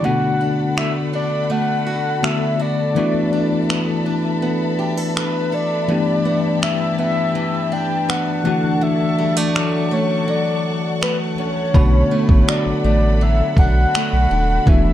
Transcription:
0.00 2.97 B2 medium
0.00 2.19 D3 medium
0.00 0.11 G3 medium
0.00 2.19 A3 soft
0.00 0.11 E4 medium
0.00 5.85 A4 medium
0.00 2.93 F#5 medium
0.00 14.93 A5 medium
0.00 2.93 B5 medium
0.00 0.37 C#6 medium
0.04 2.20 B3 medium
0.04 2.20 D4 medium
0.04 2.20 F#4 medium
0.04 0.77 F#5 loud
0.41 1.13 D4 medium
0.77 1.49 A3 medium
0.77 0.92 E5 loud
0.77 finger snap medium
1.13 2.23 D4 medium
1.13 1.53 D5 medium
1.50 3.69 A3 medium
1.50 2.26 F#5 loud
1.86 2.58 F#4 medium
2.22 2.96 D3 soft
2.22 2.95 A3 soft
2.22 2.96 B3 soft
2.22 3.32 D4 medium
2.22 2.96 D4 soft
2.22 2.97 F#4 medium
2.22 2.63 E5 medium
2.22 finger snap loud
2.59 3.04 F#4 medium
2.59 4.07 D5 medium
2.95 5.85 E3 medium
2.95 6.46 E3 medium
2.95 5.85 A3 medium
2.95 5.85 B3 medium
2.95 5.86 D4 medium
2.95 5.86 F#4 medium
2.95 8.41 E5 medium
2.95 8.41 B5 medium
3.33 4.05 D4 medium
3.69 4.42 B3 medium
3.69 finger snap loud
4.06 5.15 D4 medium
4.42 6.25 B3 medium
4.79 4.97 G4 medium
4.97 5.51 A4 medium
5.16 6.65 D4 medium
5.16 5.56 B4 medium
5.16 finger snap loud
5.52 5.96 A4 medium
5.52 6.63 D5 loud
5.88 8.52 G2 medium
5.88 8.41 E3 medium
5.88 8.41 A3 medium
5.88 8.42 B3 medium
5.88 8.42 D4 medium
5.88 8.42 G4 medium
6.25 6.97 B3 medium
6.62 7.34 E3 medium
6.62 6.97 E5 medium
6.62 finger snap loud
6.98 8.07 B3 medium
6.98 7.75 E5 loud
7.35 8.52 E3 medium
7.72 11.22 D4 medium
7.72 8.11 G5 medium
8.09 8.53 B3 medium
8.09 8.84 F#5 medium
8.09 finger snap loud
8.44 8.81 D3 medium
8.44 11.33 E3 medium
8.44 11.34 A3 medium
8.44 11.34 D4 medium
8.44 11.35 F#4 medium
8.44 11.71 A4 medium
8.44 14.63 F#5 medium
8.44 11.71 C#6 medium
8.81 11.74 D3 medium
8.81 9.39 E5 loud
9.18 9.36 G3 medium
9.36 9.90 A3 soft
9.36 9.95 D5 loud
9.55 10.27 F#3 medium
9.55 finger snap loud
9.91 11.01 A3 medium
9.91 10.31 C#5 medium
10.28 12.47 F#3 medium
10.28 11.02 D5 medium
11.01 12.11 A3 medium
11.01 11.17 B4 medium
11.01 finger snap loud
11.38 11.82 C#4 medium
11.38 12.51 C#5 loud
11.74 12.04 B1 loud
11.74 14.67 B2 medium
11.74 14.63 D3 medium
11.74 14.63 A3 medium
11.74 14.64 B3 medium
11.74 14.64 D4 medium
11.74 14.64 F#4 medium
11.74 14.93 A4 medium
11.74 14.93 B5 medium
11.74 13.97 B5 soft
11.74 kick medium
12.11 12.84 A3 medium
12.29 12.44 A1 loud
12.29 kick medium
12.48 13.20 F#3 medium
12.48 12.85 D5 loud
12.48 finger snap loud
12.66 12.73 A1 soft
12.84 13.42 A1 medium
12.84 13.94 A3 medium
12.84 13.24 D5 medium
13.21 14.67 F#3 medium
13.21 13.58 E5 loud
13.57 13.86 B1 medium
13.57 14.31 D4 medium
13.57 14.70 F#5 loud
13.57 kick medium
13.94 14.93 A3 medium
13.94 finger snap loud
14.13 14.27 B1 medium
14.31 14.60 D#1 medium
14.31 14.93 D4 medium
14.66 14.93 E1 loud
14.66 14.93 E3 medium
14.66 14.93 A3 medium
14.66 14.93 B3 medium
14.66 14.93 D4 medium
14.66 14.93 F#4 medium
14.66 14.93 E5 medium
14.66 14.93 E5 loud
14.66 kick loud

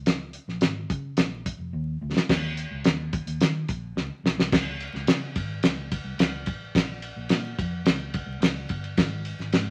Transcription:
0.00 0.35 C#2 medium
0.06 snare loud
0.06 closed hi-hat loud
0.33 closed hi-hat medium
0.48 0.60 A#1 medium
0.48 snare soft
0.61 0.85 G#1 medium
0.61 snare loud
0.61 closed hi-hat medium
0.90 1.13 C#3 medium
0.90 kick loud
0.90 closed hi-hat medium
1.17 1.52 A#1 loud
1.17 snare loud
1.17 closed hi-hat medium
1.46 kick medium
1.46 closed hi-hat medium
1.58 1.70 F1 medium
1.73 1.96 D#2 loud
2.01 2.13 D2 medium
2.17 snare loud
2.29 2.64 D#2 loud
2.29 kick loud
2.29 snare loud
2.29 crash loud
2.57 closed hi-hat medium
2.71 2.83 C#2 medium
2.84 3.19 D#2 loud
2.84 snare loud
2.84 closed hi-hat medium
3.13 kick loud
3.13 closed hi-hat medium
3.27 3.38 D#2 medium
3.27 closed hi-hat medium
3.41 3.63 D#3 medium
3.41 snare loud
3.41 closed hi-hat medium
3.68 3.91 A#1 loud
3.68 kick medium
3.68 closed hi-hat medium
3.96 4.08 C#2 medium
3.96 snare medium
4.24 4.35 B1 medium
4.24 snare medium
4.37 4.49 C2 medium
4.37 snare medium
4.52 4.87 C#2 medium
4.52 kick loud
4.52 snare loud
4.52 crash loud
4.80 ride medium
4.93 5.05 C#2 medium
4.93 snare soft
5.07 5.38 C#3 loud
5.07 snare loud
5.07 ride medium
5.36 5.59 G#1 medium
5.36 kick loud
5.36 ride medium
5.63 5.98 C#2 medium
5.63 snare loud
5.63 ride medium
5.92 kick medium
5.92 ride medium
6.04 6.16 C2 medium
6.18 6.47 C#2 medium
6.18 snare loud
6.18 ride medium
6.46 6.70 A1 medium
6.46 kick medium
6.46 ride medium
6.75 7.09 A#1 medium
6.75 kick loud
6.75 snare loud
6.75 ride medium
7.02 ride medium
7.16 7.28 A#1 loud
7.29 7.53 A#2 loud
7.29 snare loud
7.29 ride medium
7.58 7.81 F2 medium
7.58 kick loud
7.58 ride medium
7.85 8.20 C#2 medium
7.85 snare loud
7.85 ride medium
8.14 kick medium
8.14 ride medium
8.26 8.39 C2 loud
8.40 8.64 C#2 medium
8.40 snare loud
8.40 ride medium
8.69 8.93 G1 loud
8.69 kick medium
8.69 ride medium
8.84 ride soft
8.97 9.32 G#1 loud
8.97 kick loud
8.97 snare loud
8.97 ride medium
9.25 ride medium
9.39 9.51 G#1 medium
9.39 snare soft
9.53 9.70 G#2 loud
9.53 snare loud
9.53 ride medium

